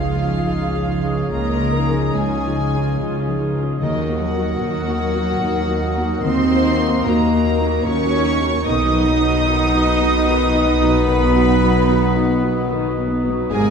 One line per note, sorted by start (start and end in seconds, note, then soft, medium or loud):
0.00 0.35 C#2 medium
0.00 1.33 C#2 medium
0.00 1.32 C#3 medium
0.00 0.16 F3 soft
0.00 0.72 F3 medium
0.00 1.32 F3 medium
0.00 1.02 C#4 medium
0.00 3.77 C#4 medium
0.00 0.16 D#4 soft
0.00 2.17 D#4 medium
0.00 3.77 D#4 medium
0.00 0.23 D#4 medium
0.00 1.31 F4 medium
0.00 0.23 F4 medium
0.00 0.17 G#4 medium
0.00 0.44 G#4 medium
0.00 3.84 G#4 medium
0.00 3.76 D#5 medium
0.00 1.32 F5 medium
0.00 1.33 F5 loud
0.16 0.41 F3 medium
0.16 0.42 D#4 medium
0.16 2.71 F4 medium
0.16 0.42 G#4 medium
0.25 0.45 C#4 medium
0.25 0.45 F4 medium
0.44 1.22 C#2 medium
0.44 0.70 F3 medium
0.44 0.71 D#4 medium
0.44 0.65 D#4 medium
0.44 0.65 F4 medium
0.44 2.44 G#4 medium
0.44 0.71 G#4 medium
0.67 0.89 C#4 medium
0.67 0.87 F4 medium
0.73 1.60 F3 soft
0.73 1.00 F3 soft
0.73 1.00 D#4 medium
0.73 1.01 G#4 medium
0.89 1.11 D#4 medium
0.89 1.11 F4 medium
1.03 1.29 F3 medium
1.03 1.88 C#4 medium
1.03 1.30 D#4 medium
1.03 1.30 G#4 medium
1.12 1.33 C#4 medium
1.12 1.33 F4 medium
1.31 2.06 C#2 medium
1.31 1.60 C#2 medium
1.31 3.84 C#3 medium
1.31 2.16 A#3 loud
1.31 1.53 D#4 medium
1.31 1.53 F4 medium
1.31 2.14 A#4 loud
1.31 2.15 A#5 loud
1.56 1.76 C#4 medium
1.56 1.75 F4 medium
1.61 3.25 F3 medium
1.61 1.86 F3 soft
1.61 1.86 D#4 medium
1.61 1.87 G#4 medium
1.76 1.96 D#4 medium
1.76 1.96 F4 medium
1.89 2.14 F3 medium
1.89 3.53 C#4 medium
1.89 2.14 D#4 soft
1.89 2.15 G#4 medium
1.97 2.17 C#4 medium
1.97 2.15 F4 medium
2.15 2.90 C#2 medium
2.15 2.42 F3 medium
2.15 3.40 G#3 medium
2.15 2.35 D#4 medium
2.15 4.33 D#4 medium
2.15 2.36 F4 medium
2.15 3.39 G#4 medium
2.15 3.39 G#5 medium
2.15 3.40 G#5 loud
2.36 2.58 C#4 medium
2.36 2.57 F4 medium
2.45 2.70 F3 medium
2.45 2.71 D#4 medium
2.45 2.98 G#4 medium
2.45 2.71 G#4 medium
2.58 2.79 D#4 medium
2.58 2.79 F4 medium
2.72 2.98 F3 medium
2.72 2.98 D#4 soft
2.72 3.84 F4 medium
2.72 2.98 G#4 medium
2.79 3.00 C#4 medium
2.79 2.98 F4 medium
2.99 3.71 C#2 medium
2.99 3.24 F3 medium
2.99 3.18 D#4 medium
2.99 3.25 D#4 medium
2.99 3.18 F4 medium
2.99 3.84 G#4 medium
2.99 3.25 G#4 medium
3.19 3.40 C#4 medium
3.19 3.38 F4 medium
3.26 3.84 F3 medium
3.26 3.52 F3 medium
3.26 3.52 D#4 medium
3.26 3.52 G#4 medium
3.39 3.60 D#4 medium
3.39 3.59 F4 medium
3.54 3.78 F3 medium
3.54 3.84 C#4 medium
3.54 3.79 D#4 soft
3.54 3.79 G#4 medium
3.60 3.81 C#4 medium
3.60 3.81 F4 medium
3.79 4.51 D#2 medium
3.79 4.07 D#2 medium
3.79 4.17 D#3 medium
3.79 6.25 D#3 medium
3.79 3.99 F#3 medium
3.79 4.18 D#4 medium
3.79 3.99 D#4 medium
3.79 8.34 D#5 medium
3.79 4.17 D#5 medium
3.79 4.18 D#5 loud
3.83 8.49 A#3 medium
3.83 8.49 D#4 loud
3.83 8.41 A#4 medium
3.99 4.20 A#3 medium
3.99 4.20 F#4 medium
4.09 5.97 A#3 medium
4.09 4.32 A#3 medium
4.09 4.32 D#4 medium
4.09 4.33 F#4 medium
4.19 6.25 F#3 loud
4.19 4.41 F#3 medium
4.19 4.41 D#4 medium
4.19 6.24 F#4 loud
4.19 6.21 F#5 medium
4.19 6.25 F#5 loud
4.34 4.58 A#3 medium
4.34 5.67 D#4 medium
4.34 4.58 D#4 medium
4.34 4.58 F#4 medium
4.40 4.60 A#3 medium
4.40 4.60 F#4 medium
4.61 5.31 D#2 medium
4.61 4.79 F#3 medium
4.61 4.84 A#3 medium
4.61 4.79 D#4 medium
4.61 4.84 D#4 medium
4.61 7.05 F#4 medium
4.61 4.85 F#4 medium
4.80 5.00 A#3 medium
4.80 5.00 F#4 medium
4.87 5.11 A#3 medium
4.87 5.11 D#4 medium
4.87 5.11 F#4 medium
4.87 5.40 A#4 medium
5.00 5.20 F#3 medium
5.00 5.20 D#4 medium
5.13 5.37 A#3 medium
5.13 5.37 D#4 medium
5.13 5.38 F#4 medium
5.13 7.58 D#5 medium
5.20 5.40 A#3 medium
5.20 5.40 F#4 medium
5.40 6.15 D#2 medium
5.40 5.59 F#3 medium
5.40 5.65 A#3 medium
5.40 5.59 D#4 medium
5.40 5.65 D#4 medium
5.40 5.65 F#4 medium
5.40 7.31 A#4 medium
5.62 5.83 A#3 medium
5.62 5.83 F#4 medium
5.68 5.94 A#3 medium
5.68 6.51 D#4 medium
5.68 5.94 D#4 medium
5.68 5.94 F#4 medium
5.83 6.04 F#3 medium
5.83 6.04 D#4 medium
5.96 6.22 A#3 medium
5.96 6.78 A#3 medium
5.96 6.22 D#4 medium
5.96 6.22 F#4 medium
6.03 6.24 A#3 medium
6.03 6.24 F#4 medium
6.23 6.95 D#2 loud
6.23 6.51 D#2 medium
6.23 8.70 D#3 medium
6.23 6.44 F#3 medium
6.23 7.03 C4 loud
6.23 6.44 D#4 medium
6.23 7.03 C5 loud
6.23 7.04 C6 loud
6.45 6.65 A#3 medium
6.45 6.65 F#4 medium
6.52 6.77 A#3 medium
6.52 8.12 D#4 medium
6.52 6.77 D#4 medium
6.52 6.77 F#4 medium
6.64 6.85 F#3 medium
6.64 6.85 D#4 medium
6.79 7.03 A#3 medium
6.79 8.38 A#3 medium
6.79 7.04 D#4 medium
6.79 7.03 F#4 medium
6.86 7.06 A#3 medium
6.86 7.06 F#4 medium
7.04 7.77 D#2 medium
7.04 7.25 F#3 medium
7.04 7.86 A#3 loud
7.04 7.30 A#3 medium
7.04 7.30 D#4 medium
7.04 7.25 D#4 medium
7.04 9.73 F#4 medium
7.04 7.31 F#4 medium
7.04 7.84 A#4 loud
7.04 7.86 A#5 loud
7.04 7.87 A#5 loud
7.27 7.47 A#3 medium
7.27 7.46 F#4 medium
7.32 7.57 A#3 medium
7.32 7.57 D#4 medium
7.32 7.58 F#4 medium
7.32 7.85 A#4 medium
7.47 7.67 F#3 medium
7.47 7.67 D#4 medium
7.59 7.84 D#4 medium
7.59 7.85 F#4 medium
7.59 11.49 D#5 medium
7.67 7.87 A#3 medium
7.67 7.87 F#4 medium
7.84 8.56 D#2 loud
7.84 8.05 F#3 medium
7.84 8.11 A#3 medium
7.84 8.66 C#4 loud
7.84 8.05 D#4 medium
7.84 8.11 D#4 medium
7.84 8.11 F#4 medium
7.84 8.69 A#4 medium
7.84 8.65 C#5 loud
7.84 8.66 C#6 loud
8.05 8.26 A#3 medium
8.05 8.26 F#4 medium
8.13 8.38 A#3 medium
8.13 9.46 D#4 medium
8.13 8.38 D#4 medium
8.13 8.38 F#4 medium
8.25 8.46 F#3 medium
8.25 8.46 D#4 medium
8.39 8.69 A#3 medium
8.39 8.64 A#3 medium
8.39 8.64 D#4 medium
8.46 8.66 A#3 medium
8.46 8.66 F#4 medium
8.64 13.49 B1 loud
8.64 8.92 B1 loud
8.64 11.05 B2 loud
8.64 8.85 D#3 loud
8.64 13.49 B3 loud
8.64 11.03 D#4 loud
8.64 13.49 D#4 medium
8.64 13.49 D#4 loud
8.64 11.06 D#5 loud
8.64 13.49 D#5 medium
8.64 10.82 D#6 loud
8.64 11.07 D#6 loud
8.68 13.50 B4 loud
8.87 9.07 F#3 medium
8.93 10.79 F#3 medium
8.93 9.18 B3 medium
8.93 9.18 D#4 medium
8.93 9.18 F#4 medium
9.07 9.27 B3 medium
9.20 10.53 B3 medium
9.20 9.45 B3 medium
9.20 9.45 D#4 medium
9.20 9.45 F#4 medium
9.27 9.47 F#3 medium
9.46 9.67 D#3 loud
9.46 9.71 B3 medium
9.46 11.87 D#4 medium
9.46 9.71 D#4 medium
9.46 9.72 F#4 medium
9.66 9.87 F#3 medium
9.74 9.98 B3 medium
9.74 9.98 D#4 medium
9.74 10.24 F#4 medium
9.74 9.99 F#4 medium
9.87 10.07 B3 medium
9.99 10.24 B3 medium
9.99 10.24 D#4 medium
9.99 10.25 F#4 medium
9.99 12.43 B4 medium
10.06 10.27 F#3 medium
10.25 10.47 D#3 loud
10.25 10.51 B3 medium
10.25 10.52 D#4 medium
10.25 12.15 F#4 medium
10.25 10.52 F#4 medium
10.46 10.67 F#3 medium
10.53 10.78 B3 medium
10.53 11.33 B3 medium
10.53 10.78 D#4 medium
10.53 10.78 F#4 medium
10.66 10.87 B3 loud
10.80 11.60 F#3 medium
10.80 11.05 B3 medium
10.80 11.05 D#4 medium
10.80 11.05 F#4 medium
10.86 11.07 F#3 medium
11.05 11.34 B1 loud
11.05 13.56 B2 loud
11.05 11.25 D#3 loud
11.05 12.67 B3 loud
11.05 12.70 B4 loud
11.05 12.70 B5 loud
11.05 12.67 B5 loud
11.26 11.47 F#3 medium
11.34 11.59 B3 medium
11.34 11.59 D#4 medium
11.34 11.59 F#4 medium
11.45 11.67 B3 medium
11.61 13.24 F#3 medium
11.61 11.87 B3 medium
11.61 11.87 D#4 medium
11.61 11.87 F#4 medium
11.66 11.88 F#3 medium
11.87 12.08 D#3 medium
11.87 12.14 B3 medium
11.87 13.70 D#4 medium
11.87 12.14 D#4 medium
11.87 12.14 F#4 medium
12.07 12.29 F#3 medium
12.16 12.41 B3 medium
12.16 12.41 D#4 medium
12.16 12.69 F#4 medium
12.16 12.41 F#4 medium
12.29 12.50 B3 medium
12.42 12.67 B3 medium
12.42 12.67 D#4 medium
12.42 12.68 F#4 medium
12.42 13.56 B4 medium
12.48 12.70 F#3 medium
12.70 12.91 D#3 loud
12.70 12.95 B3 medium
12.70 12.95 D#4 medium
12.70 12.95 F#4 medium
12.70 13.56 F#4 medium
12.90 13.11 F#3 medium
12.97 13.22 B3 medium
12.97 13.56 B3 medium
12.97 13.22 D#4 medium
12.97 13.22 F#4 medium
13.10 13.31 B3 medium
13.23 13.56 F#3 medium
13.23 13.49 B3 medium
13.23 13.49 D#4 medium
13.23 13.49 F#4 medium
13.31 13.52 F#3 medium
13.50 13.70 G#1 medium
13.50 13.70 G#2 medium
13.50 13.58 G#2 soft
13.50 13.70 G#2 medium
13.50 13.70 C3 medium
13.50 13.70 G#3 loud
13.50 13.70 A#3 loud
13.50 13.70 D#4 medium
13.50 13.70 D#4 loud
13.50 13.70 G#4 loud
13.50 13.70 A#4 medium
13.50 13.70 D#5 loud
13.50 13.70 G#5 loud
13.60 13.65 G#2 soft
13.67 13.70 G#2 soft